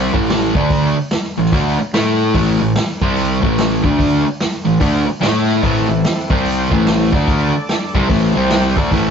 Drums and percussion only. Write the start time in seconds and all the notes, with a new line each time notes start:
0.14 kick
0.30 snare, open hi-hat
0.55 kick
0.70 kick, open hi-hat
1.11 snare, open hi-hat
1.45 snare
1.52 kick, open hi-hat
1.93 snare, open hi-hat
2.34 kick, open hi-hat
2.75 snare, open hi-hat
3.02 kick
3.16 open hi-hat
3.43 kick
3.58 snare, open hi-hat
3.84 kick
3.99 kick, open hi-hat
4.40 snare, open hi-hat
4.81 kick, open hi-hat
5.23 snare, open hi-hat
5.49 snare
5.63 kick, open hi-hat
6.04 snare, open hi-hat
6.30 kick
6.45 open hi-hat
6.72 kick
6.86 snare, open hi-hat
7.13 kick, snare
7.28 kick, open hi-hat
7.69 snare, open hi-hat
7.95 kick
8.10 kick, open hi-hat
8.50 snare, open hi-hat
8.77 kick, snare
8.92 kick, open hi-hat